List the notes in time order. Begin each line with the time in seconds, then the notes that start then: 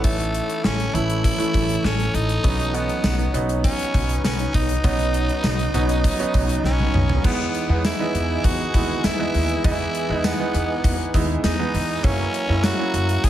Already playing: A1 E3 A3 C#4 E4 A4 C#5 A5
0.04 A3, kick, closed hi-hat
0.19 closed hi-hat
0.34 closed hi-hat
0.49 closed hi-hat
0.64 A1 C#4, snare
0.80 closed hi-hat
0.93 A1 E3 A3 C#4 E4, closed hi-hat
1.10 closed hi-hat
1.24 E4, kick, closed hi-hat
1.38 E3 A3 C#4 E4, closed hi-hat
1.54 A1, kick, closed hi-hat
1.69 closed hi-hat
1.84 A1 C#4, snare
2.00 closed hi-hat
2.14 A1 D#4, closed hi-hat
2.29 closed hi-hat
2.43 B1 F#3 B3 C#4 D#4 B4 F#5, kick, closed hi-hat
2.59 closed hi-hat
2.73 F#3 B3 C#4 D#4, closed hi-hat
2.89 closed hi-hat
3.04 B1, snare, tambourine
3.19 closed hi-hat
3.34 B1 F#3 B3 C#4 D#4, closed hi-hat
3.49 closed hi-hat
3.64 C#4, kick, closed hi-hat
3.79 closed hi-hat
3.94 B1, kick, closed hi-hat
4.09 closed hi-hat
4.24 B1 C#4, snare, tambourine
4.39 closed hi-hat
4.54 B1 D#4, kick, closed hi-hat
4.69 closed hi-hat
4.84 B1 F#3 B3 C#4 D#4, kick, closed hi-hat
4.99 closed hi-hat
5.14 closed hi-hat
5.29 closed hi-hat
5.44 B1, snare, tambourine
5.59 closed hi-hat
5.74 B1 F#3 B3 C#4 D#4, closed hi-hat
5.89 closed hi-hat
6.04 kick, closed hi-hat
6.19 F#3 B3 C#4 D#4, closed hi-hat
6.34 B1, kick, closed hi-hat
6.49 closed hi-hat
6.64 B1 C#4, snare
6.79 high tom
6.94 B1, mid tom
7.09 floor tom
7.24 E2 E3 G#3 B3 D#4 G#4 B4 D#5 G#5, kick, crash
7.55 closed hi-hat
7.69 E2 E3 G#3 B3 D#4
7.85 E4, snare, closed hi-hat, tambourine
7.99 E3 G#3 B3 D#5
8.14 E2, closed hi-hat
8.44 E2 F#4, kick, closed hi-hat
8.74 D#2 G#3 B3 D#4 E4, kick, closed hi-hat
9.04 E2 E4, snare, closed hi-hat, tambourine
9.19 E3 G#3 B3 D#5
9.34 D#2, open hi-hat
9.49 closed hi-hat
9.64 E2 E3 G#3 B3 E4 D#5, kick, closed hi-hat
9.95 closed hi-hat
10.09 E2 E3 G#3 B3 D#4
10.24 B3, snare, closed hi-hat, tambourine
10.39 E3 G#3 B3 D#4
10.54 E2, closed hi-hat
10.84 E2, kick, closed hi-hat
11.14 D#2 G#3 B3 D#4 E4, kick, closed hi-hat
11.44 E2 D#4, snare, closed hi-hat, tambourine
11.59 E3 G#3 B3 D#4
11.74 E2, open hi-hat
12.03 F#2 F#3 A#3 C#4 E4 F#4 C#5 E5 A#5, kick, closed hi-hat
12.34 closed hi-hat
12.49 F#2 F#3 A#3 C#4 E4
12.64 F#4, snare, closed hi-hat, tambourine
12.78 F#3 A#3 C#4 E4
12.94 F#2, closed hi-hat
13.09 closed hi-hat
13.24 F#2 G#4, kick, closed hi-hat